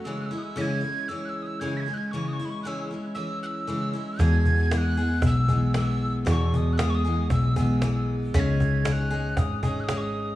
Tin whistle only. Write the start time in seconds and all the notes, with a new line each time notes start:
0.04 E6
0.21 F#6
0.26 E6
0.38 D#6
0.43 E6
0.57 B6
0.61 G#6
1.08 E6
1.25 E6 F#6
1.42 D#6 E6
1.60 G#6
1.77 G#6 B6
1.94 F#6 G#6
2.11 C#6
2.28 D#6
2.33 C#6
2.45 B5
2.50 C#6
2.63 F#6
2.67 E6
3.15 E6
3.43 E6 F#6
4.21 G#6
4.74 G#6
4.78 F#6
5.26 E6
5.78 E6
6.31 C#6
6.56 D#6
6.73 F#6
6.78 D#6
6.90 C#6
6.95 D#6
7.31 E6
7.59 E6
8.35 B6
8.40 G#6
8.88 G#6
8.92 F#6
9.39 D#6
9.63 D#6
9.80 D#6 F#6
9.97 C#6 D#6